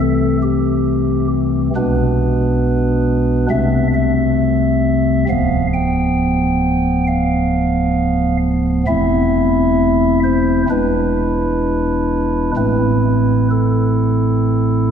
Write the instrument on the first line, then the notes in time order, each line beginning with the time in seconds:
pipe organ
Already playing: C2 C3 E3 A3 C4
0.00 A4
0.43 G4
1.76 B1 B2 G#3 B3 D4 B4
3.50 C2 C3 A3 C4 E5
3.94 E5
5.29 D1 D2 F3 B3 F5
5.74 G5
7.07 F5
8.87 E1 E2 A3 C4 E4 E5
10.24 C5
10.69 E1 E2 G#3 D4 E4 B4
12.56 A1 A2 A3 C4 E4 B4
13.51 A4